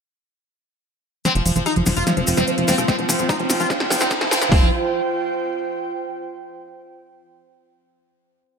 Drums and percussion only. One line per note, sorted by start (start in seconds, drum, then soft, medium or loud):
1.25 cross-stick soft
1.25 snare soft
1.25 closed hi-hat medium
1.25 cabasa soft
1.35 closed hi-hat medium
1.46 open hi-hat loud
1.46 cabasa medium
1.56 closed hi-hat medium
1.56 cabasa medium
1.66 cross-stick medium
1.66 closed hi-hat medium
1.66 cabasa soft
1.76 closed hi-hat medium
1.86 snare medium
1.86 open hi-hat loud
1.86 cabasa medium
1.96 closed hi-hat medium
1.96 cabasa soft
2.07 cross-stick soft
2.07 snare medium
2.07 closed hi-hat medium
2.07 cabasa soft
2.17 closed hi-hat medium
2.27 open hi-hat loud
2.27 cabasa medium
2.37 cross-stick soft
2.37 snare medium
2.37 cabasa soft
2.47 closed hi-hat medium
2.47 cabasa soft
2.58 closed hi-hat medium
2.68 snare medium
2.68 open hi-hat loud
2.68 cabasa loud
2.78 cross-stick medium
2.78 closed hi-hat medium
2.78 cabasa medium
2.88 kick loud
2.88 snare medium
2.88 closed hi-hat medium
2.88 cabasa soft
2.99 closed hi-hat medium
3.09 snare medium
3.09 open hi-hat loud
3.09 cabasa loud
3.19 closed hi-hat medium
3.19 cabasa medium
3.29 kick loud
3.29 snare medium
3.29 closed hi-hat medium
3.29 cabasa soft
3.39 closed hi-hat medium
3.50 snare medium
3.50 open hi-hat loud
3.50 cabasa loud
3.60 closed hi-hat medium
3.60 cabasa medium
3.70 kick loud
3.70 snare medium
3.70 closed hi-hat medium
3.70 cabasa soft
3.80 snare medium
3.80 closed hi-hat medium
3.90 snare loud
3.90 open hi-hat loud
3.90 cabasa loud
4.00 snare medium
4.00 closed hi-hat medium
4.00 cabasa medium
4.11 kick loud
4.11 snare loud
4.11 closed hi-hat medium
4.11 cabasa soft
4.21 snare medium
4.21 closed hi-hat medium
4.31 snare loud
4.31 open hi-hat loud
4.31 cabasa medium
4.42 snare loud
4.42 closed hi-hat medium
4.42 cabasa medium
4.52 kick loud
4.52 snare loud
4.52 open hi-hat medium